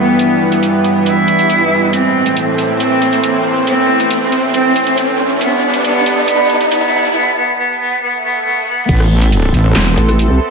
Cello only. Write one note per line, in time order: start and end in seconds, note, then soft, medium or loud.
0.00 0.54 B3 medium
1.06 1.85 E4 loud
1.93 2.50 C4 medium
2.80 3.37 C4 medium
3.67 4.24 C4 medium
4.54 5.11 C4 loud
5.41 5.83 B3 loud
5.84 6.26 B3 loud
6.28 6.70 B3 loud
6.71 7.13 B3 loud
7.15 7.35 B3 loud
7.37 7.57 B3 loud
7.58 7.78 B3 loud
7.80 8.00 B3 loud
8.02 8.22 B3 loud
8.24 8.44 B3 loud
8.45 8.65 B3 loud
8.67 8.87 B3 loud